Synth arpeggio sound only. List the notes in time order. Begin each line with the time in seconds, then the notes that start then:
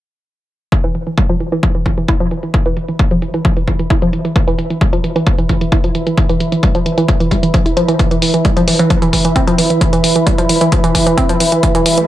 0.72 E3
0.84 E3
0.95 E3
1.07 E3
1.18 G3
1.29 F3
1.40 E3
1.52 E3
1.63 F3
1.75 E3
1.86 E3
1.98 E3
2.08 E4
2.20 F3
2.31 E3
2.43 E3
2.54 E3
2.66 E3
2.77 E3
2.88 E3
2.99 G3
3.11 F3
3.22 E3
3.34 E3
3.45 F3
3.57 E3
3.68 E3
3.79 E3
3.90 E4
4.02 F3
4.13 E3
4.25 E3
4.36 E3
4.47 E3
4.58 E3
4.70 E3
4.81 G3
4.93 F3
5.04 E3
5.16 E3
5.27 F3
5.38 E3
5.49 E3
5.61 E3
5.72 E4
5.84 F3
5.95 E3
6.07 E3
6.18 E3
6.29 E3
6.40 E3
6.52 E3
6.63 G3
6.75 F3
6.86 E3
6.98 E3
7.08 F3
7.20 E3
7.31 G3
7.43 E3
7.54 F3
7.66 E4
7.77 F3
7.88 E3
7.99 E3
8.11 E3
8.22 E3
8.34 E3
8.45 G3
8.57 F3
8.68 E3
8.79 E3
8.90 F3
9.02 E3
9.13 E3
9.25 E3
9.36 C4
9.47 F3
9.58 E3
9.70 E3
9.81 E3
9.93 E3
10.04 E3
10.16 E3
10.26 G3
10.38 F3
10.49 E3
10.61 E3
10.72 F3
10.84 E3
10.95 E3
11.06 E3
11.17 C4
11.29 F3
11.40 E3
11.52 E3
11.63 E3
11.75 E3
11.86 E3
11.98 E3